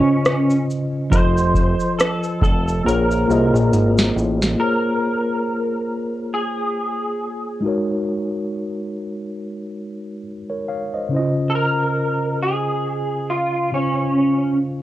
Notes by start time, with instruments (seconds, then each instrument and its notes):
Already playing: tine electric piano C#3 C#4 F4 C5 D#5, clean electric guitar C#4
0.25 cross-stick, closed hi-hat, shaker
0.50 shaker
0.71 shaker
1.10 analog synth bass F1, tine electric piano F3 F4 A4 C5 D#5, clean electric guitar C5, kick, closed hi-hat, shaker
1.38 shaker
1.54 kick, shaker
1.80 shaker
1.99 clean electric guitar A4, cross-stick, closed hi-hat, shaker
2.23 shaker
2.41 analog synth bass F1, clean electric guitar A4, kick, shaker
2.68 shaker
2.84 analog synth bass A#1, tine electric piano A#3 F4 G#4 C5 C#5, clean electric guitar A#4
2.88 closed hi-hat, shaker
3.11 shaker
3.28 analog synth bass C2, tine electric piano A#3 F4 G#4 C5 D#5, shaker
3.54 analog synth bass A#1, shaker
3.73 analog synth bass G#1, closed hi-hat, shaker
3.98 snare, shaker
4.16 analog synth bass A1, shaker
4.42 snare, shaker
4.56 tine electric piano A#3 F4 G#4, clean electric guitar A#4
4.62 tine electric piano C5 C#5
6.34 clean electric guitar G#4
7.60 tine electric piano G#3 D#4 F#4
7.66 tine electric piano A#4 C#5
10.50 tine electric piano A#4 C#5
10.69 tine electric piano C#5 F5
10.94 tine electric piano C5 D#5
11.09 tine electric piano C#3 C#4 E4
11.15 tine electric piano C5 D#5
11.19 tine electric piano F4
11.50 clean electric guitar A4
11.55 clean electric guitar A#4
12.43 clean electric guitar G#4
13.30 clean electric guitar F4
13.72 tine electric piano C#3 C#4 F4 C5 F5, clean electric guitar C#4